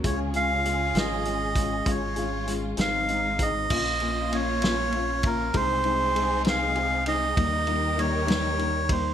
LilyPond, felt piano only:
\new Staff \with { instrumentName = "Felt piano" } { \time 6/8 \key des \major \tempo 4. = 66 <aes des' f'>8 <aes des' f'>8 <aes des' f'>8 <aes des' f'>8 <aes des' f'>8 <aes des' f'>8 | <aes des' f'>8 <aes des' f'>8 <aes des' f'>8 <aes c' ees'>8 <aes c' ees'>8 <aes c' ees'>8 | <bes des' f'>8 <bes des' f'>8 <bes des' f'>8 <bes des' f'>8 <bes des' f'>8 <bes des' f'>8 | <aes c' ees'>8 <aes c' ees'>8 <aes c' ees'>8 <aes c' ees'>8 <aes c' ees'>8 <aes c' ees'>8 |
<g bes ees'>8 <g bes ees'>8 <g bes ees'>8 <g bes ees'>8 <g bes ees'>8 <g bes ees'>8 | }